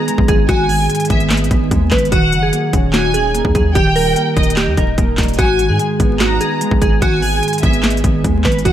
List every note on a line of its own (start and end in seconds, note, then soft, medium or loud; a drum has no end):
0.00 0.90 B3 medium
0.00 0.69 D#4 medium
0.00 0.26 G#4 medium
0.08 0.88 G#3 medium
0.08 closed hi-hat medium
0.18 0.48 G#1 loud
0.18 kick loud
0.28 0.68 D#3 medium
0.28 0.45 G#4 medium
0.28 kick loud
0.28 closed hi-hat medium
0.49 0.88 G#1 loud
0.49 1.51 G#2 medium
0.49 0.66 F#4 loud
0.49 1.06 G#5 loud
0.49 kick loud
0.49 closed hi-hat medium
0.69 1.71 D#3 medium
0.69 1.88 G#4 medium
0.69 open hi-hat medium
0.90 1.70 G#3 medium
0.90 closed hi-hat medium
0.95 closed hi-hat medium
1.00 closed hi-hat medium
1.05 closed hi-hat medium
1.10 1.49 G#1 loud
1.10 1.50 B3 loud
1.10 1.29 E5 medium
1.10 kick loud
1.10 closed hi-hat medium
1.20 closed hi-hat soft
1.30 2.12 D#4 medium
1.30 snare loud
1.30 clap medium
1.30 closed hi-hat medium
1.37 closed hi-hat medium
1.44 closed hi-hat soft
1.51 1.70 G#1 loud
1.51 2.12 B3 medium
1.51 kick medium
1.51 closed hi-hat medium
1.71 1.91 D#2 loud
1.71 2.12 G#3 loud
1.71 kick loud
1.71 closed hi-hat medium
1.91 2.11 G#1 loud
1.91 2.11 D#3 medium
1.91 2.08 B4 medium
1.91 kick loud
1.91 snare medium
1.91 clap medium
1.91 closed hi-hat medium
1.98 closed hi-hat medium
2.05 closed hi-hat medium
2.12 2.34 D#1 loud
2.12 3.14 D#3 loud
2.12 2.41 F#4 loud
2.12 2.51 F#5 loud
2.12 kick loud
2.12 closed hi-hat medium
2.32 2.52 F#1 loud
2.32 3.34 F#3 medium
2.32 closed hi-hat medium
2.43 2.91 G#4 medium
2.53 2.73 A#3 medium
2.53 closed hi-hat medium
2.73 3.42 D#1 loud
2.73 3.13 C#4 medium
2.73 kick loud
2.73 closed hi-hat medium
2.93 3.75 D#4 medium
2.93 3.10 F#4 medium
2.93 3.32 G#5 loud
2.93 snare loud
2.93 clap medium
2.93 closed hi-hat medium
3.14 3.75 C#4 medium
3.14 3.52 G#4 medium
3.14 closed hi-hat medium
3.34 3.75 A#3 loud
3.34 closed hi-hat medium
3.45 3.74 D#2 loud
3.45 kick loud
3.55 3.75 F#3 medium
3.55 3.72 G#4 medium
3.55 kick loud
3.55 closed hi-hat medium
3.75 4.15 D#1 loud
3.75 4.77 D#3 medium
3.75 3.92 G4 loud
3.75 4.33 G5 loud
3.75 kick loud
3.75 closed hi-hat medium
3.96 4.98 G3 medium
3.96 4.53 A#4 medium
3.96 open hi-hat medium
4.16 4.97 A#3 medium
4.16 closed hi-hat medium
4.37 4.69 D#1 loud
4.37 4.76 D#4 loud
4.37 4.56 D#5 medium
4.37 kick loud
4.37 closed hi-hat soft
4.43 closed hi-hat medium
4.50 closed hi-hat medium
4.57 4.74 G4 medium
4.57 5.39 D#5 medium
4.57 snare loud
4.57 clap medium
4.57 closed hi-hat medium
4.67 4.77 D#2 loud
4.77 4.97 D#1 loud
4.77 5.39 D#4 medium
4.77 5.35 A#4 medium
4.77 kick loud
4.77 closed hi-hat medium
4.98 5.17 D#1 loud
4.98 5.39 A#3 loud
4.98 kick loud
4.98 closed hi-hat medium
5.18 5.38 D#1 loud
5.18 5.39 G3 medium
5.18 kick loud
5.18 snare medium
5.18 clap medium
5.18 closed hi-hat medium
5.23 closed hi-hat medium
5.28 closed hi-hat medium
5.33 closed hi-hat soft
5.39 5.71 G#1 loud
5.39 6.41 G#2 medium
5.39 5.67 F#4 loud
5.39 5.77 G#5 loud
5.39 kick loud
5.39 closed hi-hat medium
5.59 6.61 D#3 medium
5.59 closed hi-hat medium
5.69 5.79 G#2 loud
5.69 6.17 G#4 medium
5.79 6.60 G#3 medium
5.79 closed hi-hat medium
6.00 6.39 G#1 loud
6.00 6.40 B3 medium
6.00 kick loud
6.00 closed hi-hat medium
6.20 7.22 D#4 medium
6.20 6.37 F#4 medium
6.20 6.59 A#5 medium
6.20 snare loud
6.20 clap medium
6.20 closed hi-hat medium
6.41 7.43 B3 medium
6.41 6.79 G#4 medium
6.41 closed hi-hat medium
6.61 7.42 G#3 loud
6.61 closed hi-hat medium
6.71 7.01 G#1 loud
6.71 kick loud
6.82 7.21 D#3 medium
6.82 6.98 G#4 medium
6.82 kick loud
6.82 closed hi-hat medium
7.02 7.41 G#1 loud
7.02 8.04 G#2 medium
7.02 7.19 F#4 loud
7.02 7.60 G#5 loud
7.02 kick loud
7.02 closed hi-hat medium
7.22 8.24 D#3 medium
7.22 8.41 G#4 medium
7.22 open hi-hat medium
7.43 8.23 G#3 medium
7.43 closed hi-hat medium
7.48 closed hi-hat medium
7.53 closed hi-hat medium
7.58 closed hi-hat medium
7.63 8.02 G#1 loud
7.63 8.03 B3 loud
7.63 7.83 E5 medium
7.63 kick loud
7.63 closed hi-hat medium
7.73 closed hi-hat soft
7.83 8.65 D#4 medium
7.83 snare loud
7.83 clap medium
7.83 closed hi-hat medium
7.91 closed hi-hat medium
7.97 closed hi-hat soft
8.04 8.24 G#1 loud
8.04 8.65 B3 medium
8.04 kick loud
8.04 closed hi-hat medium
8.24 8.44 D#2 loud
8.24 8.65 G#3 loud
8.24 kick loud
8.24 closed hi-hat medium
8.44 8.64 G#1 loud
8.44 8.64 D#3 medium
8.44 8.62 B4 medium
8.44 kick loud
8.44 snare medium
8.44 clap medium
8.44 closed hi-hat medium
8.52 closed hi-hat medium
8.59 closed hi-hat medium
8.65 8.72 D#1 loud
8.65 8.72 D#3 loud
8.65 8.72 F#4 loud
8.65 8.72 F#5 loud
8.65 kick loud
8.65 closed hi-hat medium